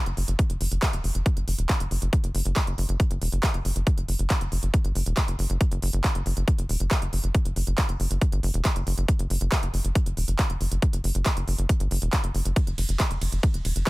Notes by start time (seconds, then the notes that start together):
0.06 F#1, closed hi-hat
0.17 F#1, open hi-hat
0.28 F#1, closed hi-hat
0.39 kick, closed hi-hat
0.50 F#1, closed hi-hat
0.61 F#1, open hi-hat
0.71 F#1, closed hi-hat
0.82 kick, clap, closed hi-hat
0.93 F#1, closed hi-hat
1.04 F#1, open hi-hat
1.15 F#1, closed hi-hat
1.26 kick, closed hi-hat
1.37 G1, closed hi-hat
1.48 F#1, open hi-hat
1.58 E1, closed hi-hat
1.69 kick, clap, closed hi-hat
1.80 F#1, closed hi-hat
1.91 F#1, open hi-hat
2.02 F#1, closed hi-hat
2.13 kick, closed hi-hat
2.24 F#1, closed hi-hat
2.35 F#1, open hi-hat
2.45 F#1, closed hi-hat
2.56 kick, clap, closed hi-hat
2.67 F#1, closed hi-hat
2.78 F#1, open hi-hat
2.89 F#1, closed hi-hat
3.00 kick, closed hi-hat
3.11 F#1, closed hi-hat
3.22 E1, open hi-hat
3.32 F#1, closed hi-hat
3.43 kick, clap, closed hi-hat
3.54 F#1, closed hi-hat
3.65 F#1, open hi-hat
3.76 F#1, closed hi-hat
3.87 kick, closed hi-hat
3.98 F#1, closed hi-hat
4.08 F#1, open hi-hat
4.19 F#1, closed hi-hat
4.30 kick, clap, closed hi-hat
4.41 F#1, closed hi-hat
4.52 F#1, open hi-hat
4.63 F#1, closed hi-hat
4.74 kick, closed hi-hat
4.85 G1, closed hi-hat
4.95 F#1, open hi-hat
5.06 E1, closed hi-hat
5.17 kick, clap, closed hi-hat
5.28 F#1, closed hi-hat
5.39 F#1, open hi-hat
5.50 F#1, closed hi-hat
5.61 kick, closed hi-hat
5.72 F#1, closed hi-hat
5.82 F#1, open hi-hat
5.93 F#1, closed hi-hat
6.04 kick, clap, closed hi-hat
6.15 F#1, closed hi-hat
6.26 F#1, open hi-hat
6.37 F#1, closed hi-hat
6.48 kick, closed hi-hat
6.58 F#1, closed hi-hat
6.69 E1, open hi-hat
6.80 F#1, closed hi-hat
6.91 kick, clap, closed hi-hat
7.02 F#1, closed hi-hat
7.13 F#1, open hi-hat
7.24 F#1, closed hi-hat
7.35 kick, closed hi-hat
7.45 F#1, closed hi-hat
7.56 F#1, open hi-hat
7.67 F#1, closed hi-hat
7.78 kick, clap, closed hi-hat
7.89 F#1, closed hi-hat
8.00 F#1, open hi-hat
8.11 F#1, closed hi-hat
8.22 kick, closed hi-hat
8.32 G1, closed hi-hat
8.43 F#1, open hi-hat
8.54 E1, closed hi-hat
8.65 kick, clap, closed hi-hat
8.76 F#1, closed hi-hat
8.87 F#1, open hi-hat
8.98 F#1, closed hi-hat
9.08 kick, closed hi-hat
9.19 F#1, closed hi-hat
9.30 F#1, open hi-hat
9.41 F#1, closed hi-hat
9.52 kick, clap, closed hi-hat
9.63 F#1, closed hi-hat
9.74 F#1, open hi-hat
9.85 F#1, closed hi-hat
9.95 kick, closed hi-hat
10.06 F#1, closed hi-hat
10.17 E1, open hi-hat
10.28 F#1, closed hi-hat
10.39 kick, clap, closed hi-hat
10.50 F#1, closed hi-hat
10.61 F#1, open hi-hat
10.72 F#1, closed hi-hat
10.82 kick, closed hi-hat
10.93 F#1, closed hi-hat
11.04 F#1, open hi-hat
11.15 F#1, closed hi-hat
11.26 kick, clap, closed hi-hat
11.37 F#1, closed hi-hat
11.48 F#1, open hi-hat
11.58 F#1, closed hi-hat
11.69 kick, closed hi-hat
11.80 G1, closed hi-hat
11.91 F#1, open hi-hat
12.02 E1, closed hi-hat
12.13 kick, clap, closed hi-hat
12.24 F#1, closed hi-hat
12.35 F#1, open hi-hat
12.45 F#1, closed hi-hat
12.56 kick, closed hi-hat, ride
12.67 F#1, closed hi-hat
12.78 F#1, open hi-hat, ride
12.89 F#1, closed hi-hat
13.00 kick, clap, closed hi-hat, ride
13.11 F#1, closed hi-hat
13.21 F#1, open hi-hat, ride
13.32 F#1, closed hi-hat
13.43 kick, closed hi-hat, ride
13.54 F#1, closed hi-hat
13.65 E1, open hi-hat, ride
13.76 F#1, closed hi-hat